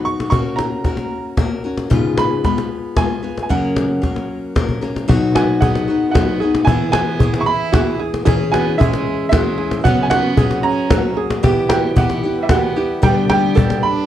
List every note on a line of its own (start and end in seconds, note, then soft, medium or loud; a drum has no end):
0.00 0.30 F#3 medium
0.00 0.31 B3 soft
0.00 0.31 D#4 medium
0.00 0.31 F#4 medium
0.05 0.29 C#6 medium
0.20 cajon slap medium
0.30 0.83 A#3 medium
0.30 0.85 C#4 medium
0.30 0.84 F#4 medium
0.30 0.85 A#4 medium
0.30 0.59 C#6 medium
0.30 cajon bass medium
0.56 1.59 A#5 medium
0.56 cajon slap medium
0.72 cajon slap soft
0.84 1.36 A#3 soft
0.84 1.37 C#4 medium
0.84 1.37 F#4 medium
0.84 1.38 A#4 medium
0.84 cajon bass medium
0.84 cajon slap soft
0.97 cajon slap medium
1.37 1.64 A#3 medium
1.37 1.65 C#4 medium
1.37 1.63 F#4 medium
1.37 1.63 A#4 medium
1.37 cajon bass medium
1.37 cajon slap medium
1.64 1.90 C#4 soft
1.64 1.90 F#4 soft
1.64 1.91 A#4 soft
1.77 cajon slap medium
1.90 2.44 G#2 medium
1.90 2.44 C#3 medium
1.90 2.43 G#3 medium
1.90 2.44 B3 medium
1.90 2.44 F4 medium
1.90 2.44 B4 medium
1.90 cajon bass medium
2.18 2.43 B5 medium
2.18 cajon slap medium
2.32 cajon slap soft
2.44 2.95 G#3 soft
2.44 2.96 B3 medium
2.44 2.97 F4 medium
2.44 2.98 B4 medium
2.44 2.99 B5 medium
2.44 cajon bass medium
2.44 cajon slap soft
2.58 cajon slap medium
2.97 3.23 G#3 medium
2.97 3.23 B3 medium
2.97 3.22 F4 medium
2.97 3.21 B4 medium
2.97 3.41 G#5 medium
2.97 cajon bass medium
2.97 cajon slap medium
3.23 3.50 G#3 soft
3.23 3.50 B3 soft
3.23 3.50 F4 soft
3.23 3.50 B4 soft
3.38 cajon slap medium
3.43 3.50 G#5 soft
3.49 4.03 F#2 medium
3.49 4.03 C#3 medium
3.49 4.00 F#3 medium
3.49 4.00 A#3 medium
3.49 4.02 C#4 medium
3.49 4.02 A#4 medium
3.49 4.53 F#5 medium
3.49 cajon bass medium
3.49 cajon slap soft
3.76 cajon slap medium
4.02 4.54 F#3 medium
4.02 4.55 A#3 medium
4.02 4.56 C#4 medium
4.02 4.56 A#4 medium
4.02 cajon bass medium
4.02 cajon slap soft
4.16 cajon slap medium
4.43 cajon slap soft
4.55 4.82 F#3 medium
4.55 4.82 A#3 medium
4.55 4.81 C#4 medium
4.55 4.80 A#4 medium
4.55 cajon bass medium
4.55 cajon slap medium
4.69 cajon bass soft
4.81 5.07 F#3 soft
4.81 5.08 A#3 soft
4.81 5.09 C#4 soft
4.81 5.09 A#4 soft
4.81 cajon slap medium
4.96 cajon slap medium
5.08 5.62 B2 medium
5.08 5.61 F#3 medium
5.08 5.62 B3 medium
5.08 5.62 D#4 medium
5.08 5.34 F#4 medium
5.08 5.62 F#4 loud
5.08 cajon bass medium
5.23 cajon slap soft
5.33 5.59 B3 medium
5.33 5.61 F#4 medium
5.33 5.60 G#5 medium
5.33 cajon slap medium
5.59 5.89 F#3 medium
5.59 6.10 B3 medium
5.59 5.89 B3 medium
5.59 6.14 G#4 medium
5.59 6.10 F#5 medium
5.59 cajon bass medium
5.64 5.88 D#4 medium
5.64 5.87 F#4 medium
5.75 cajon slap medium
5.88 6.14 B3 soft
5.88 6.15 D#4 soft
5.88 6.15 F#4 soft
6.11 6.42 F#3 medium
6.11 6.61 B3 medium
6.11 6.40 F#4 medium
6.11 6.63 F#5 medium
6.15 6.42 B3 medium
6.15 6.42 D#4 medium
6.15 6.40 F#4 medium
6.15 cajon bass medium
6.15 cajon slap medium
6.40 6.67 B3 soft
6.40 6.68 D#4 soft
6.40 6.68 F#4 soft
6.40 6.67 G#4 medium
6.55 cajon slap medium
6.62 6.90 B3 medium
6.62 6.91 G#5 medium
6.67 7.20 E3 medium
6.67 7.20 B3 medium
6.67 6.94 E4 medium
6.67 7.21 E4 medium
6.67 7.22 G#4 medium
6.67 cajon bass medium
6.81 cajon slap soft
6.90 7.35 B3 medium
6.90 7.19 F#4 medium
6.90 7.41 G#5 medium
6.90 cajon slap medium
7.19 7.72 E3 medium
7.19 7.73 B3 medium
7.19 7.73 E4 medium
7.19 7.72 G#4 medium
7.19 7.74 G#4 medium
7.19 cajon bass medium
7.34 cajon slap medium
7.39 7.45 E4 medium
7.39 7.48 C#6 medium
7.46 7.96 E4 medium
7.46 7.96 B5 loud
7.72 8.24 E3 medium
7.72 8.26 B3 medium
7.72 8.25 E4 medium
7.72 7.99 F#4 medium
7.72 8.25 G#4 medium
7.72 cajon bass medium
7.72 cajon slap medium
7.99 8.24 G#4 medium
8.14 cajon slap medium
8.25 8.77 E3 medium
8.25 8.79 C#4 medium
8.25 8.79 E4 loud
8.25 8.52 G#4 medium
8.25 8.79 G#4 medium
8.25 cajon bass medium
8.40 cajon slap soft
8.52 8.78 B3 medium
8.52 8.78 F#4 medium
8.52 8.80 G#5 medium
8.52 cajon slap medium
8.78 9.30 E3 medium
8.78 9.30 G#3 medium
8.78 9.31 C#4 medium
8.78 9.31 E4 medium
8.78 9.31 G#4 medium
8.78 9.32 G#4 medium
8.78 9.28 E5 medium
8.78 cajon bass medium
8.93 cajon slap medium
9.29 9.85 E3 medium
9.29 9.82 G#3 medium
9.29 9.85 C#4 medium
9.29 9.86 E4 medium
9.29 9.57 F#4 medium
9.29 9.86 G#4 medium
9.29 9.86 E5 medium
9.29 cajon bass medium
9.29 cajon slap medium
9.58 9.83 G#4 medium
9.71 cajon slap medium
9.84 10.39 F#2 medium
9.84 10.38 C#3 medium
9.84 10.37 F#3 medium
9.84 10.02 B3 medium
9.84 10.38 B3 medium
9.84 10.38 C#4 medium
9.84 10.10 F#4 medium
9.84 10.39 F#4 medium
9.84 10.03 F#5 medium
9.84 cajon bass medium
10.03 10.11 B3 medium
10.03 10.11 G#5 medium
10.10 10.61 B3 medium
10.10 10.37 F#4 medium
10.10 10.66 F#5 loud
10.10 cajon slap medium
10.37 10.89 F#3 medium
10.37 10.91 B3 medium
10.37 10.91 C#4 medium
10.37 10.91 F#4 medium
10.37 10.90 G#4 medium
10.37 cajon bass medium
10.51 cajon slap medium
10.63 11.14 C#4 medium
10.63 11.14 A#5 medium
10.90 11.42 F#3 medium
10.90 11.43 A#3 medium
10.90 11.43 C#4 medium
10.90 11.16 F#4 medium
10.90 11.44 F#4 medium
10.90 cajon bass medium
10.90 cajon slap medium
11.17 11.44 G#4 medium
11.30 cajon slap medium
11.43 11.95 E3 medium
11.43 14.06 G3 medium
11.43 11.97 B3 medium
11.43 13.01 E4 medium
11.43 11.97 E4 medium
11.43 11.70 G4 medium
11.43 11.98 G4 loud
11.43 14.06 B4 medium
11.43 cajon bass medium
11.57 cajon slap soft
11.69 11.95 B3 medium
11.69 11.97 F#4 medium
11.69 11.95 G5 medium
11.69 cajon slap medium
11.96 12.23 E3 medium
11.96 12.24 B3 medium
11.96 12.40 B3 medium
11.96 12.24 E4 medium
11.96 12.50 G4 medium
11.96 12.22 G4 medium
11.96 12.40 F#5 medium
11.96 cajon bass medium
12.10 cajon slap medium
12.24 12.50 B3 soft
12.24 12.51 E4 soft
12.24 12.50 G4 soft
12.41 12.49 G3 medium
12.41 12.50 E5 medium
12.49 12.77 E3 medium
12.49 12.77 B3 medium
12.49 13.01 B3 medium
12.49 12.76 E4 medium
12.49 12.76 F#4 medium
12.49 12.75 G4 medium
12.49 13.05 F#5 medium
12.49 cajon bass medium
12.49 cajon slap medium
12.76 13.02 B3 soft
12.76 13.03 E4 soft
12.76 13.02 G4 soft
12.76 13.02 G4 medium
13.02 13.56 G2 medium
13.02 13.56 D3 medium
13.02 13.54 G3 medium
13.02 13.55 B3 medium
13.02 13.29 B3 medium
13.02 13.55 D4 medium
13.02 14.06 D4 medium
13.02 13.28 G4 medium
13.02 13.55 G4 medium
13.02 13.28 G5 medium
13.02 cajon bass medium
13.16 cajon slap soft
13.30 13.80 B3 medium
13.30 13.56 G4 medium
13.30 13.84 G5 medium
13.30 cajon slap medium
13.55 14.06 G3 medium
13.55 14.06 B3 medium
13.55 14.06 D4 medium
13.55 14.06 G4 medium
13.55 14.06 A4 medium
13.55 cajon bass medium
13.70 cajon slap medium
13.83 14.06 D4 medium
13.83 14.06 B5 medium